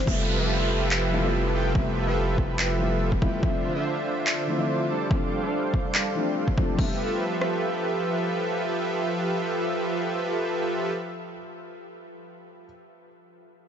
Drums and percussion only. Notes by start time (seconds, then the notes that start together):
0.07 kick
0.91 finger snap, clap
1.75 kick
2.38 kick
2.59 finger snap, clap
3.12 kick
3.22 kick
3.43 kick
4.27 finger snap, clap
5.11 kick
5.74 kick
5.95 finger snap, clap
6.48 kick
6.58 kick
6.79 kick, crash
7.42 cross-stick